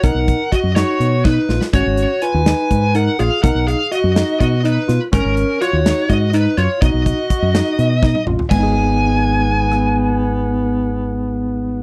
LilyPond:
<<
  \new Staff \with { instrumentName = "Lead electric guitar" } { \time 7/8 \key gis \dorian \tempo 4 = 124 fis''4 dis''8 cis''4 b'8. r16 | cis''4 gis''4. fis''8 eis''8 | fis''8 eis''8 dis''4 dis''8 b'8. r16 | ais'4 cis''4 dis''8 b'8 cis''8 |
dis''2. r8 | gis''2.~ gis''8~ | gis''2.~ gis''8 | }
  \new Staff \with { instrumentName = "Alto saxophone" } { \time 7/8 \key gis \dorian ais'4 fis'8 fis'4 dis'8. r16 | fis'4 b'4. ais'8 gis'8 | ais'8 gis'8 fis'4 fis'8 dis'8. r16 | cis'4 fis'4 fis'8 dis'8 eis'8 |
fis'2. r8 | b2.~ b8~ | b2.~ b8 | }
  \new Staff \with { instrumentName = "Tine electric piano" } { \time 7/8 \key gis \dorian dis'4 fis'8 dis'4 dis'8 eis'8 | cis'4 eis'8 dis'4 dis'8 eis'8 | dis'4 fis'8 dis'4 dis'8 eis'8 | cis'4 eis'8 dis'4 dis'8 eis'8 |
dis'4 fis'8 dis'4 dis'8 eis'8 | <gis b dis' gis'>2.~ <gis b dis' gis'>8~ | <gis b dis' gis'>2.~ <gis b dis' gis'>8 | }
  \new Staff \with { instrumentName = "Fingered electric bass" } { \clef bass \time 7/8 \key gis \dorian b,,16 b,,8 r8 fis,8 r16 b,4 ais,,16 r16 | gis,,16 gis,,8 r8 dis,8 r16 gis,4 ais,,16 r16 | b,,16 b,,8 r8 fis,8 r16 b,4 b,16 r16 | gis,,16 gis,,8 r8 dis,8 r16 gis,4 fis,16 r16 |
b,,16 b,,8 r8 fis,8 r16 b,4 a,,16 r16 | gis,,2.~ gis,,8~ | gis,,2.~ gis,,8 | }
  \new DrumStaff \with { instrumentName = "Drums" } \drummode { \time 7/8 <hh bd>8 <hh bd>8 <hh bd>8 <hh sn>8 hh8 <bd sn>8 sn16 sn16 | <hh bd>8 hh8 hh8 <hh sn>8 <hh bd>8 hh8 hh8 | <hh bd>8 hh8 hh8 <hh sn>8 <hh bd>8 hh8 <hh sn>8 | <hh bd>8 hh8 hh8 <hh sn>8 <hh bd>8 hh8 hh8 |
<hh bd>8 <hh bd>8 <hh bd>8 <hh sn>8 hh8 <bd sn>16 tommh16 toml16 tomfh16 | <cymc bd>4. r4 ss4 | r4. r4 r4 | }
>>